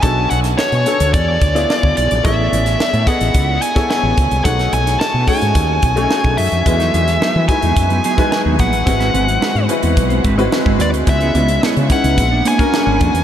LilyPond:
<<
  \new Staff \with { instrumentName = "Lead electric guitar" } { \time 4/4 \key e \major \tempo 4 = 109 a''8 fis''8 cis''4 d''4. d''8 | e''4. fis''4 gis''8 gis''4 | fis''8 gis''8 a''8 gis''2 e''8~ | e''4. gis''4. gis''8 fis''8~ |
fis''4. r2 d''8 | e''4 r8 fis''4 gis''4. | }
  \new Staff \with { instrumentName = "Grand piano" } { \time 4/4 \key e \major <b d' fis' a' cis''>4~ <b d' fis' a' cis''>16 r16 <b d' fis' a' cis''>8 r8. <b e' f' gis' d''>4 r16 | <b e' gis' a' cis''>4~ <b e' gis' a' cis''>16 r16 <b e' gis' a' dis''>4 r16 <b e' gis' a' cis''>4 r16 | <a dis' fis' gis' cis''>4~ <a dis' fis' gis' cis''>16 r16 <a cis' dis' fis' gis' cis''>4 r16 <a cis' dis' fis' gis' cis''>4 r16 | <gis b e' fis' b'>4~ <gis b e' fis' b'>16 r16 <gis dis' e' fis' b'>4 r16 <gis dis' e' fis' b'>4 r16 |
<gis bis e' fis' b'>4~ <gis bis e' fis' b'>16 r16 <gis bis e' fis' b'>4 r16 <gis bis e' fis' b'>4 r16 | <gis b cis' e' b'>4~ <gis b cis' e' b'>16 r16 <gis cis' dis' e' b'>8 r8. <gis cis' d' fis' ais'>4 r16 | }
  \new Staff \with { instrumentName = "Clean electric guitar" } { \time 4/4 \key e \major r1 | r1 | r1 | r16 <fis b dis' gis'>16 <fis b dis' gis'>16 r16 <fis b dis' gis'>16 r8 <fis b dis' gis'>16 r16 <fis b dis' b'>16 <fis b dis' gis'>16 r8 <fis b dis' gis'>16 <fis b dis' b'>16 r16 |
r16 <gis bis fis' b'>16 <gis bis fis' b'>16 r16 <gis bis fis' b'>16 r8 <gis bis fis' b'>16 r16 <gis bis fis' bis'>16 <gis bis fis' b'>16 r8 <gis bis fis' b'>16 <gis bis fis' bis'>16 r16 | r16 <b e' gis' cis''>16 <b e' gis' cis''>16 r16 <b e' gis' cis''>16 r8 <b e' gis' cis''>16 r16 <ais d' gis' d''>16 <ais d' gis' cis''>16 r8 <ais d' gis' cis''>16 <ais d' gis' d''>16 r16 | }
  \new Staff \with { instrumentName = "Fretless electric bass" } { \clef bass \time 4/4 \key e \major b,,8 b,,8 r16 b,16 r16 d,16 e,8 d,8 r16 d,16 b,,16 ais,,16 | a,,8 a,,8 r16 a,16 r16 a,,16 cis,8 r8. a,,16 cis,16 bis,,16 | b,,8 b,,8 r16 b,16 r16 gis,16 dis,8 b,,8 r16 b,,16 fis,16 eis,16 | e,8 e,8 r16 e16 r16 e,16 fis,8 r8. dis,16 ais,,16 a,,16 |
gis,,8 gis,,8 r16 gis,16 r16 e,16 b,,8 gis,,8 r16 gis,,16 dis,16 d,16 | cis,8 cis,8 r16 cis16 r16 cis,16 ais,,8 r8. gis,,16 eis,16 e,16 | }
  \new DrumStaff \with { instrumentName = "Drums" } \drummode { \time 4/4 <hh bd>8 hh16 <hh sn>16 sn16 hh16 <hh sn>16 hh16 <hh bd>8 <hh bd>16 <hh sn>16 sn16 bd16 hh16 hh16 | <hh bd>8 hh16 <hh sn>16 sn16 hh16 <hh bd>16 hh16 <hh bd>8 hh16 <hh bd sn>16 sn8 <hh bd>16 hh16 | <hh bd>16 <hh sn>16 hh16 <hh sn>16 sn8 <hho bd sn>16 hh16 <hh bd>8 <hh bd>16 hh16 sn16 <hh bd>16 hho16 hh16 | <hh bd>16 <hh sn>16 hh16 <hh sn>16 sn8 <hh bd>16 hh16 <hh bd>16 hh16 hh16 <hh bd sn>16 sn8 <hh bd>16 hh16 |
<hh bd>16 <hh sn>16 hh16 hh16 sn16 hh16 hh16 hh16 <hh bd>16 hh16 <hh bd>16 hh16 sn16 bd16 hh16 hh16 | <hh bd>16 hh16 hh16 hh16 sn16 hh16 <hh bd sn>16 hh16 <hh bd>8 hh16 <hh bd>16 sn8 <hh bd>16 hh16 | }
>>